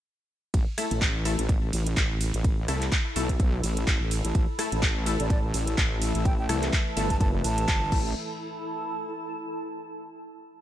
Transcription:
0.54 0.65 A1 loud
0.54 7.91 E4 medium
0.54 kick loud
0.54 closed hi-hat medium
0.54 ride medium
0.78 0.86 A3 medium
0.78 0.86 E4 medium
0.78 0.86 A4 loud
0.78 cross-stick medium
0.78 open hi-hat loud
0.78 ride medium
0.91 1.37 A1 loud
0.91 closed hi-hat medium
1.02 kick loud
1.02 clap loud
1.02 closed hi-hat soft
1.02 ride medium
1.25 1.34 A3 medium
1.25 1.34 E4 medium
1.25 1.34 A4 loud
1.25 open hi-hat medium
1.25 ride medium
1.35 1.71 A1 loud
1.35 7.92 A4 medium
1.35 closed hi-hat medium
1.49 kick loud
1.49 closed hi-hat medium
1.49 ride medium
1.73 1.95 A1 loud
1.73 open hi-hat loud
1.73 ride medium
1.87 closed hi-hat medium
1.97 2.32 A1 loud
1.97 kick loud
1.97 clap loud
1.97 closed hi-hat medium
1.97 ride medium
2.21 7.92 A5 medium
2.21 open hi-hat medium
2.21 ride medium
2.34 2.67 A1 loud
2.34 closed hi-hat medium
2.44 kick loud
2.44 closed hi-hat medium
2.44 ride medium
2.68 2.90 C2 loud
2.68 2.77 A3 medium
2.68 2.77 E4 medium
2.68 2.77 A4 loud
2.68 cross-stick medium
2.68 open hi-hat loud
2.68 ride medium
2.82 clap soft
2.82 closed hi-hat medium
2.92 kick loud
2.92 clap loud
2.92 closed hi-hat medium
2.92 ride medium
3.16 3.62 B1 loud
3.16 3.24 A3 loud
3.16 3.24 E4 medium
3.16 3.24 A4 loud
3.16 open hi-hat loud
3.16 ride medium
3.29 kick medium
3.29 closed hi-hat medium
3.40 kick loud
3.40 closed hi-hat medium
3.40 ride medium
3.63 3.86 A1 loud
3.63 open hi-hat loud
3.63 ride medium
3.77 closed hi-hat medium
3.87 3.99 A1 loud
3.87 kick loud
3.87 clap loud
3.87 closed hi-hat medium
3.87 ride medium
4.01 4.22 A1 loud
4.11 open hi-hat loud
4.11 ride medium
4.25 4.33 A1 loud
4.25 closed hi-hat medium
4.35 4.46 A1 loud
4.35 7.89 E3 medium
4.35 7.89 A3 medium
4.35 6.24 A4 medium
4.35 7.89 E5 medium
4.35 kick loud
4.35 closed hi-hat medium
4.35 ride medium
4.59 4.67 A3 loud
4.59 4.67 E4 medium
4.59 4.67 A4 loud
4.59 cross-stick medium
4.59 open hi-hat loud
4.59 ride medium
4.72 5.18 A1 loud
4.72 closed hi-hat medium
4.83 kick loud
4.83 clap loud
4.83 closed hi-hat soft
4.83 ride medium
5.06 5.15 A3 medium
5.06 5.15 E4 medium
5.06 5.15 A4 loud
5.06 open hi-hat medium
5.06 ride medium
5.20 5.52 A1 loud
5.20 5.26 D5 medium
5.20 closed hi-hat medium
5.30 5.39 D5 medium
5.30 kick loud
5.30 closed hi-hat medium
5.30 ride medium
5.54 5.76 A1 loud
5.54 open hi-hat loud
5.54 ride medium
5.67 closed hi-hat medium
5.78 6.13 A1 loud
5.78 kick loud
5.78 clap loud
5.78 closed hi-hat medium
5.78 ride medium
6.02 open hi-hat medium
6.02 ride medium
6.15 6.48 A1 loud
6.15 closed hi-hat medium
6.25 7.90 B4 medium
6.25 6.34 G5 medium
6.25 kick loud
6.25 closed hi-hat medium
6.25 ride medium
6.39 6.45 G5 medium
6.49 6.71 C2 loud
6.49 6.57 A3 loud
6.49 6.57 E4 medium
6.49 6.57 A4 loud
6.49 cross-stick medium
6.49 open hi-hat loud
6.49 ride medium
6.63 clap soft
6.63 closed hi-hat medium
6.73 kick loud
6.73 clap loud
6.73 closed hi-hat medium
6.73 ride medium
6.97 7.43 G1 medium
6.97 7.05 A3 loud
6.97 7.05 E4 medium
6.97 7.05 A4 loud
6.97 open hi-hat medium
6.97 ride medium
7.10 7.17 A5 medium
7.10 kick medium
7.10 closed hi-hat medium
7.21 7.29 A5 medium
7.21 kick loud
7.21 closed hi-hat medium
7.21 ride medium
7.44 7.67 A1 loud
7.44 8.12 A5 loud
7.44 open hi-hat loud
7.44 ride medium
7.58 closed hi-hat medium
7.68 7.90 G1 loud
7.68 kick loud
7.68 clap loud
7.68 closed hi-hat medium
7.68 ride medium
7.92 8.14 A1 medium
7.92 8.14 E3 medium
7.92 8.10 A3 medium
7.92 8.14 A3 medium
7.92 8.10 E4 medium
7.92 9.79 E4 medium
7.92 8.10 A4 medium
7.92 8.14 A4 medium
7.92 8.14 E5 medium
7.92 kick loud
7.92 crash medium
8.00 9.79 A4 medium
8.31 10.02 A5 medium

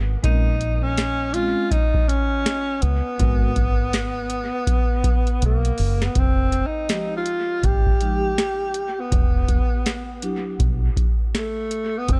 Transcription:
0.00 0.15 G#1 medium
0.23 1.54 A#1 loud
0.23 0.52 G#3 medium
0.23 0.52 C4 medium
0.23 0.52 C#4 medium
0.23 0.85 D#4 loud
0.23 0.52 A#4 medium
0.23 kick loud
0.23 closed hi-hat medium
0.61 closed hi-hat medium
0.83 1.35 C#4 loud
0.98 snare loud
0.98 closed hi-hat medium
1.33 1.62 G#3 medium
1.33 1.63 C4 medium
1.33 1.63 C#4 medium
1.33 1.73 F4 loud
1.33 1.63 F4 medium
1.33 closed hi-hat medium
1.71 2.10 D#4 loud
1.71 kick medium
1.71 closed hi-hat medium
1.94 kick medium
2.08 2.84 C#4 loud
2.08 closed hi-hat medium
2.46 snare loud
2.46 closed hi-hat medium
2.82 3.00 C#2 medium
2.82 5.42 B3 medium
2.82 closed hi-hat medium
3.18 4.50 G#1 loud
3.18 3.47 G#3 medium
3.18 3.48 B3 medium
3.18 3.48 F#4 medium
3.18 3.49 A#4 medium
3.18 kick loud
3.18 closed hi-hat medium
3.56 kick medium
3.56 closed hi-hat medium
3.93 snare loud
3.93 closed hi-hat medium
4.30 closed hi-hat medium
4.67 kick medium
4.67 closed hi-hat medium
5.04 kick loud
5.04 closed hi-hat medium
5.27 closed hi-hat soft
5.42 5.70 B1 medium
5.42 6.07 A#3 medium
5.42 closed hi-hat medium
5.65 closed hi-hat soft
5.78 6.07 F#1 medium
5.78 open hi-hat medium
6.02 6.20 B3 medium
6.02 snare medium
6.15 6.61 F1 medium
6.15 6.68 C4 medium
6.15 kick loud
6.15 closed hi-hat medium
6.52 closed hi-hat medium
6.66 7.15 D#4 medium
6.89 7.18 F3 medium
6.89 7.18 G#3 medium
6.89 7.19 D#4 medium
6.89 7.19 G4 medium
6.89 snare loud
6.89 closed hi-hat medium
7.17 7.66 F4 medium
7.26 closed hi-hat medium
7.63 7.92 G#1 medium
7.63 9.02 G4 loud
7.63 kick medium
7.63 closed hi-hat medium
7.86 kick medium
8.00 8.29 F3 medium
8.00 8.30 G#3 medium
8.00 8.30 D#4 medium
8.00 8.30 G4 medium
8.00 closed hi-hat medium
8.38 snare loud
8.38 closed hi-hat medium
8.74 closed hi-hat medium
9.00 10.47 B3 medium
9.12 9.58 E1 medium
9.12 kick loud
9.12 closed hi-hat medium
9.48 kick medium
9.48 closed hi-hat medium
9.86 snare loud
9.86 closed hi-hat medium
10.22 10.51 F#3 medium
10.22 10.52 D4 medium
10.22 10.52 E4 medium
10.22 10.52 G4 medium
10.22 closed hi-hat medium
10.60 10.88 B1 loud
10.60 kick medium
10.60 closed hi-hat medium
10.97 kick medium
10.97 closed hi-hat medium
11.35 12.00 A3 medium
11.35 snare loud
11.35 closed hi-hat medium
11.71 closed hi-hat medium
11.98 12.10 B3 medium
12.08 12.20 F1 medium
12.08 12.20 C4 loud
12.08 kick loud
12.08 closed hi-hat medium

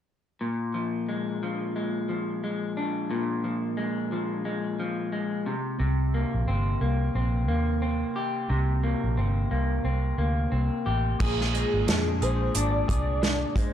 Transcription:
0.41 3.09 A#2 medium
0.74 1.42 F3 soft
1.09 1.75 G#3 soft
1.43 2.08 F3 soft
1.76 2.42 G#3 medium
2.09 3.43 F3 medium
2.44 3.76 G#3 soft
2.77 5.47 D4 medium
3.10 5.46 A#2 medium
3.44 4.11 F3 medium
3.77 4.44 G#3 soft
4.12 4.78 F3 medium
4.45 5.11 G#3 medium
4.80 5.55 F3 medium
5.12 5.54 G#3 medium
5.46 5.78 C3 medium
5.79 6.23 C2 medium
5.79 8.48 C3 medium
6.14 6.81 A#3 medium
6.34 6.45 A#1 medium
6.47 6.75 G1 medium
6.47 7.14 C4 medium
6.81 7.08 C2 medium
6.81 7.48 A#3 soft
7.15 7.48 A#1 medium
7.15 7.81 C4 medium
7.48 8.03 D#2 medium
7.48 8.83 A#3 medium
7.82 9.16 C4 medium
8.16 10.85 G4 medium
8.50 8.93 C2 medium
8.50 11.19 C3 medium
8.83 9.51 A#3 soft
9.04 9.15 A#1 medium
9.17 9.45 G1 medium
9.17 9.84 C4 medium
9.51 9.78 C2 medium
9.51 10.18 A#3 soft
9.84 10.12 C2 medium
9.84 10.51 C4 medium
10.18 10.45 D2 medium
10.18 11.53 A#3 medium
10.52 10.69 C2 medium
10.52 11.28 C4 medium
10.86 11.14 A1 medium
10.86 11.20 G4 medium
11.20 11.63 A#1 medium
11.20 13.73 A#2 medium
11.20 12.21 G#4 medium
11.20 12.24 G#4 loud
11.20 kick loud
11.20 crash medium
11.41 snare soft
11.53 13.55 G#3 medium
11.53 closed hi-hat medium
11.74 11.85 G#1 medium
11.87 12.23 F2 medium
11.87 12.54 D4 medium
11.87 snare loud
11.87 closed hi-hat medium
12.21 12.48 A#1 medium
12.21 12.87 G#4 medium
12.21 12.56 C5 loud
12.21 closed hi-hat medium
12.55 12.82 G#1 medium
12.55 13.21 D4 medium
12.55 13.59 D5 loud
12.55 closed hi-hat medium
12.88 13.43 C2 medium
12.88 13.73 G#4 medium
12.88 kick medium
12.88 closed hi-hat medium
13.22 13.73 D4 medium
13.22 snare medium
13.22 closed hi-hat medium
13.56 13.73 G#3 medium
13.56 13.73 C5 medium
13.56 kick medium
13.56 closed hi-hat medium

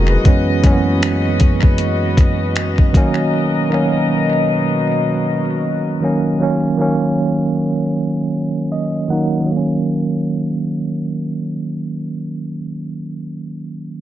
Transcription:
0.00 0.17 F1 medium
0.00 0.22 D#3 medium
0.00 0.27 E4 medium
0.00 0.27 F#4 medium
0.00 6.36 F#4 medium
0.00 0.10 G#4 medium
0.00 0.22 G#4 medium
0.00 0.26 A#4 medium
0.00 2.90 D#5 medium
0.10 0.46 G#4 medium
0.10 0.46 B4 medium
0.24 0.58 F#2 medium
0.24 0.59 E3 medium
0.24 0.59 G#3 medium
0.24 0.60 B3 medium
0.24 2.92 C#4 medium
0.24 2.92 B4 medium
0.24 kick loud
0.24 closed hi-hat medium
0.28 0.61 C#4 medium
0.62 1.99 F#2 medium
0.62 1.99 E3 medium
0.62 2.00 G#3 medium
0.62 0.72 A#3 medium
0.62 kick medium
0.62 closed hi-hat medium
0.66 2.01 C#4 medium
0.72 2.04 B3 medium
1.03 finger snap loud
1.03 closed hi-hat medium
1.40 kick medium
1.40 closed hi-hat medium
1.63 kick medium
1.78 closed hi-hat medium
2.17 kick loud
2.17 closed hi-hat medium
2.56 finger snap loud
2.56 closed hi-hat medium
2.78 kick medium
2.93 6.37 B2 medium
2.93 3.62 D#3 medium
2.93 3.62 F#3 medium
2.93 3.63 A#3 medium
2.93 6.37 A#4 medium
2.93 6.37 D#5 medium
2.93 kick medium
2.93 closed hi-hat medium
2.97 3.64 C#4 loud
3.70 5.06 D#3 medium
3.70 5.07 F#3 medium
3.70 5.08 A#3 medium
3.74 5.09 C#4 medium
6.00 6.35 D#3 medium
6.00 6.36 F#3 medium
6.00 6.37 A#3 medium
6.04 6.37 C#4 medium
6.39 6.74 D#3 medium
6.39 6.74 F#3 medium
6.39 6.75 A#3 medium
6.43 6.76 C#4 medium
6.77 8.14 D#3 medium
6.77 8.15 F#3 medium
6.77 8.15 A#3 medium
6.82 8.16 C#4 medium
8.72 9.07 D#5 medium
9.08 9.39 D#3 medium
9.08 9.44 F#3 medium
9.08 9.44 A#3 medium
9.08 9.46 F#5 medium
9.12 9.45 D#4 medium
9.40 12.53 D#3 medium
9.46 12.59 F#3 medium
9.51 12.64 A#3 medium
9.57 12.70 C#4 medium

